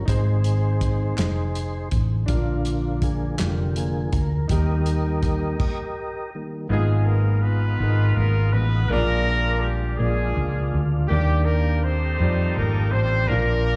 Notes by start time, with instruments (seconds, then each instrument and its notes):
Already playing: grand piano C#4 G4
0.05 fingered electric bass G#1, grand piano G#2 D#4 G#4 C5, tonewheel organ D#3 G#3 C5, kick, closed hi-hat
0.10 tonewheel organ C4 D#4 G#4
0.44 closed hi-hat
0.81 kick, closed hi-hat
1.16 fingered electric bass F1, grand piano D#4 G#4 C5, snare, clap, closed hi-hat
1.55 closed hi-hat
1.91 fingered electric bass A1, kick, closed hi-hat
2.26 fingered electric bass A#1, grand piano A#2 D4 F4 A#4, tonewheel organ D3 F3 A#3 D4 F4, kick, closed hi-hat
2.65 closed hi-hat
3.02 tonewheel organ G#4, kick, closed hi-hat
3.37 fingered electric bass F1, grand piano D4 F4 A4, tonewheel organ G4, snare, clap, closed hi-hat
3.48 grand piano A#4
3.76 tonewheel organ D3 F3 A#3 G#4, closed hi-hat
4.12 fingered electric bass D2, tonewheel organ A#4, kick, closed hi-hat
4.48 fingered electric bass D#2, tonewheel organ D#3 G3 G4 A#4 D#5, grand piano D#3 D#4 G4, kick, closed hi-hat
4.52 tonewheel organ A#3, grand piano A#4
4.86 closed hi-hat
5.23 kick, closed hi-hat
5.60 kick, crash
6.35 tonewheel organ D#3 G3 A#3
6.69 fingered electric bass G#1, grand piano G#2 B3 D#4 F4 G#4 D#5, horn section G#3 B3 F4 G#4, tonewheel organ G#3 D#5 F5
7.06 horn section A#3 A#4
7.43 horn section B3 D#4 F4 B4
7.79 fingered electric bass G#1, grand piano B3 D#4 F4 G#4
7.83 grand piano A#4
7.90 grand piano D#5
8.17 fingered electric bass G#1, horn section A#3 A#4
8.53 fingered electric bass A1, horn section B3 B4
8.89 fingered electric bass A#1, grand piano A#2 A#3 D4 F4 G#4 D5, horn section A#3 D4 F4 A#4, tonewheel organ D5 F5
9.62 horn section G3 G4
9.98 fingered electric bass A#1, horn section G#3 D4 F4 G#4, grand piano A#3 D4 F4 G#4
10.02 grand piano D5
10.37 fingered electric bass C#2
10.74 fingered electric bass D2
11.08 fingered electric bass D#2, grand piano D#3 A#3 D4 G4, horn section G3 A#3 D4 G4, tonewheel organ G4 G5
11.13 grand piano D5
11.46 horn section A#3 A#4
11.83 horn section C4 D#4 A4 C5
12.19 fingered electric bass F2, grand piano G3 D#4 F4 G4 D5, tonewheel organ A5
12.56 fingered electric bass G#1, horn section A#3 A#4
12.92 fingered electric bass A1, horn section C4 C5
13.28 fingered electric bass A#1, grand piano A#2 D4 F4, horn section A#3 D4 F4 A#4, tonewheel organ A#4 F5 D6
13.33 grand piano A#4